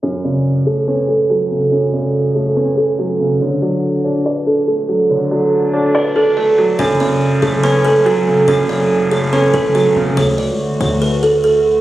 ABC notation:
X:1
M:4/4
L:1/16
Q:1/4=142
K:F#m
V:1 name="Kalimba"
c2 d2 z2 c2 B2 A2 A2 z2 | c2 d2 z2 c2 B2 A2 c4 | c2 d2 z2 c2 B2 A2 A2 z2 | c2 d2 z2 c2 B2 A2 d4 |
c2 d2 z2 c2 B2 A2 A2 z2 | c2 d2 z2 c2 B2 A2 c4 | c2 d2 z2 c2 B2 A2 A2 z2 |]
V:2 name="Analog synth pad"
z16 | z16 | z16 | z16 |
[F,CA]16- | [F,CA]16 | [D,A,F]16 |]
V:3 name="Felt piano" clef=bass
F,,2 C,4 A,2 C2 A,2 F,2 C,2 | F,,2 C,4 A,2 C2 A,2 F,2 C,2 | D,2 F,4 D2 d2 D2 A,2 F,2 | D,2 F,4 D2 d2 D2 A,2 F,2 |
F,,2 C,4 A,2 C2 A,2 F,2 C,2 | F,,2 C,4 A,2 C2 A,2 F,2 C,2 | z16 |]
V:4 name="808-style bass" clef=bass
z16 | z16 | z16 | z16 |
F,,,4 z2 F,,,6 z4 | F,,,8- F,,,2 F,,,3 E,,, F,,,2 | D,,3 C,, z2 D,,8- D,,2 |]